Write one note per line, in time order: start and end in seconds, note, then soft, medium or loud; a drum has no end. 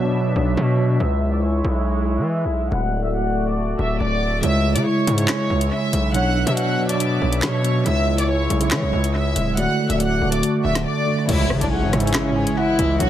0.00 0.02 B2 loud
0.00 0.33 B2 loud
0.00 0.30 B2 medium
0.00 0.03 F#3 loud
0.00 0.30 F#3 medium
0.00 0.98 B3 medium
0.00 0.04 D4 medium
0.00 0.98 D4 medium
0.00 0.05 C#5 loud
0.00 0.54 D5 medium
0.00 2.68 E5 loud
0.04 0.31 D4 medium
0.04 0.32 C#5 medium
0.04 0.55 D6 medium
0.34 0.56 B1 loud
0.34 0.71 B2 medium
0.34 0.72 F#3 medium
0.34 0.72 D4 medium
0.34 0.73 C#5 medium
0.57 0.98 B2 loud
0.57 0.98 C#5 medium
0.57 0.98 C#6 medium
0.77 0.96 B2 medium
0.77 0.97 F#3 medium
0.77 0.97 D4 medium
0.77 0.98 C#5 medium
1.00 1.62 C#2 loud
1.00 2.70 G#3 medium
1.00 2.70 E4 medium
1.00 1.30 E5 loud
1.00 1.31 E6 medium
1.32 1.41 D5 medium
1.32 1.41 D6 medium
1.43 1.73 C#5 medium
1.43 1.74 C#6 medium
1.64 2.19 B1 loud
1.76 2.26 C#5 medium
1.76 2.26 C#6 medium
2.18 2.46 E3 medium
2.29 2.69 E5 medium
2.29 2.70 E6 medium
2.45 2.70 B1 loud
2.72 3.75 D1 loud
2.72 4.41 A3 medium
2.72 4.41 F#4 medium
2.72 4.41 D5 loud
2.72 3.02 F#5 medium
2.72 3.02 F#6 medium
3.03 3.12 E5 medium
3.03 3.12 E6 medium
3.15 3.45 F#5 medium
3.15 3.45 F#6 medium
3.46 3.55 D5 medium
3.46 3.55 D6 medium
3.78 3.99 D1 loud
3.78 3.95 E5 medium
3.78 3.96 E6 medium
4.00 4.41 D1 loud
4.00 4.40 D5 medium
4.00 4.41 D6 medium
4.41 4.77 C#2 loud
4.41 4.96 C#3 loud
4.41 4.97 G#3 medium
4.41 6.13 G#3 medium
4.41 6.13 E4 medium
4.41 4.97 E4 medium
4.41 4.98 C#5 loud
4.41 4.73 E5 loud
4.41 9.53 E5 loud
4.41 4.74 E6 medium
4.41 closed hi-hat medium
4.75 4.85 C#3 loud
4.75 4.83 D5 medium
4.75 4.84 D6 medium
4.75 closed hi-hat medium
4.86 5.16 C#5 medium
4.86 5.16 C#6 medium
5.06 5.28 G#2 loud
5.06 5.15 C#3 medium
5.06 5.16 G#3 medium
5.06 5.17 E4 medium
5.06 5.17 C#5 medium
5.06 closed hi-hat medium
5.16 5.90 C#3 medium
5.16 5.90 G#3 medium
5.16 5.91 E4 medium
5.16 5.68 C#5 medium
5.16 5.91 C#5 medium
5.16 5.69 C#6 medium
5.16 closed hi-hat medium
5.28 snare loud
5.28 clap medium
5.50 5.71 C#2 loud
5.61 closed hi-hat medium
5.72 6.12 E5 medium
5.72 6.13 E6 medium
5.93 6.44 B1 loud
5.93 closed hi-hat medium
6.13 6.68 B2 medium
6.13 6.68 F#3 medium
6.13 7.84 B3 medium
6.13 7.84 D4 medium
6.13 6.69 D4 medium
6.13 6.70 C#5 loud
6.13 6.45 F#5 loud
6.13 6.45 F#6 medium
6.13 closed hi-hat medium
6.47 7.19 B2 loud
6.47 6.55 E5 medium
6.47 6.55 E6 medium
6.47 closed hi-hat medium
6.57 6.88 F#5 medium
6.57 6.88 F#6 medium
6.57 closed hi-hat medium
6.78 6.86 B2 medium
6.78 6.87 F#3 medium
6.78 6.88 D4 medium
6.78 6.89 C#5 medium
6.88 7.16 B2 medium
6.88 7.16 F#3 medium
6.88 7.17 D4 medium
6.88 7.17 C#5 medium
6.88 7.40 D5 medium
6.88 7.40 D6 medium
6.88 closed hi-hat medium
7.00 closed hi-hat medium
7.19 7.42 B1 loud
7.19 7.57 B2 medium
7.19 7.57 F#3 medium
7.19 7.58 D4 medium
7.19 7.58 C#5 medium
7.33 closed hi-hat medium
7.42 7.84 B2 loud
7.42 7.83 C#5 medium
7.42 7.84 C#6 medium
7.42 snare loud
7.42 clap loud
7.63 7.82 B2 medium
7.63 7.82 F#3 medium
7.63 7.83 D4 medium
7.63 7.84 C#5 medium
7.63 closed hi-hat medium
7.84 8.48 C#2 loud
7.84 8.39 C#3 medium
7.84 8.40 G#3 medium
7.84 9.56 G#3 medium
7.84 9.56 E4 medium
7.84 8.40 E4 medium
7.84 8.41 C#5 loud
7.84 8.16 E5 loud
7.84 8.16 E6 medium
7.84 closed hi-hat medium
8.18 8.26 D5 medium
8.18 8.27 D6 medium
8.18 closed hi-hat medium
8.29 8.59 C#5 medium
8.29 8.59 C#6 medium
8.50 8.73 B1 loud
8.50 8.58 C#3 medium
8.50 8.59 G#3 medium
8.50 8.60 E4 medium
8.50 8.61 C#5 medium
8.50 closed hi-hat medium
8.59 9.33 C#3 medium
8.59 9.33 G#3 medium
8.59 9.34 E4 medium
8.59 9.11 C#5 medium
8.59 9.34 E5 medium
8.59 9.12 C#6 medium
8.59 closed hi-hat medium
8.71 8.84 E3 loud
8.71 snare loud
8.71 clap medium
8.82 8.93 B1 loud
8.93 9.34 C#2 loud
9.04 closed hi-hat medium
9.15 9.55 E5 medium
9.15 9.55 E6 medium
9.36 9.67 D1 loud
9.36 closed hi-hat medium
9.56 10.11 D3 loud
9.56 10.11 A3 loud
9.56 11.27 A3 medium
9.56 11.27 F#4 medium
9.56 10.12 F#4 loud
9.56 11.27 D5 loud
9.56 10.13 D5 loud
9.56 9.88 F#5 medium
9.56 9.88 F#6 medium
9.56 closed hi-hat medium
9.89 10.20 D1 loud
9.89 9.97 E5 medium
9.89 9.98 E6 medium
9.89 closed hi-hat medium
10.00 10.31 F#5 medium
10.00 10.31 F#6 medium
10.00 closed hi-hat medium
10.20 10.42 D1 loud
10.20 10.30 D3 medium
10.20 10.30 A3 medium
10.20 10.31 F#4 medium
10.20 10.31 D5 medium
10.31 10.59 D3 medium
10.31 10.59 A3 medium
10.31 10.60 F#4 medium
10.31 10.41 D5 medium
10.31 10.60 D5 medium
10.31 10.41 D6 medium
10.31 closed hi-hat medium
10.43 closed hi-hat medium
10.63 10.85 D1 loud
10.63 11.00 D3 medium
10.63 11.00 A3 medium
10.63 11.01 F#4 medium
10.63 11.01 D5 medium
10.63 10.81 E5 medium
10.63 10.81 E6 medium
10.75 snare medium
10.75 closed hi-hat medium
10.86 11.26 D5 medium
10.86 11.27 D6 medium
11.05 11.24 D3 medium
11.05 11.25 A3 medium
11.05 11.26 F#4 medium
11.05 11.26 D5 medium
11.27 11.52 C#2 loud
11.27 11.82 C#3 loud
11.27 13.10 E3 medium
11.27 11.83 G#3 loud
11.27 12.98 G#3 medium
11.27 11.59 E4 loud
11.27 12.98 E4 loud
11.27 11.83 E4 medium
11.27 11.84 C#5 loud
11.27 11.59 E5 medium
11.27 closed hi-hat medium
11.27 crash loud
11.27 impact medium
11.50 11.60 C#3 loud
11.50 cross-stick loud
11.61 11.84 B1 loud
11.61 11.69 D4 medium
11.61 11.70 D5 medium
11.61 closed hi-hat medium
11.71 12.02 C#4 medium
11.71 12.02 C#5 medium
11.71 11.92 F#5 medium
11.82 11.93 G#2 loud
11.92 12.16 G#2 loud
11.92 12.01 C#3 medium
11.92 12.02 G#3 medium
11.92 12.03 E4 medium
11.92 12.03 C#5 medium
11.92 12.33 E5 medium
11.92 cross-stick medium
11.92 closed hi-hat medium
12.00 12.75 C#3 medium
12.00 12.76 G#3 medium
12.00 12.54 C#4 medium
12.00 closed hi-hat medium
12.05 12.77 E4 medium
12.05 12.55 C#5 medium
12.05 12.77 C#5 medium
12.05 closed hi-hat medium
12.14 12.32 C#3 loud
12.14 snare loud
12.14 clap medium
12.31 12.46 G#2 loud
12.36 12.56 G#5 medium
12.47 closed hi-hat medium
12.57 12.98 E4 medium
12.57 12.98 E5 medium
12.57 12.78 F#5 medium
12.79 12.99 C#2 loud
12.79 12.99 E5 medium
12.79 closed hi-hat medium
12.99 13.10 B1 loud
12.99 13.10 B2 loud
12.99 13.10 D3 loud
12.99 13.10 F#3 loud
12.99 13.10 B3 medium
12.99 13.10 D4 loud
12.99 13.10 F#4 loud
12.99 13.10 C#5 loud
12.99 13.10 F#5 medium
12.99 closed hi-hat medium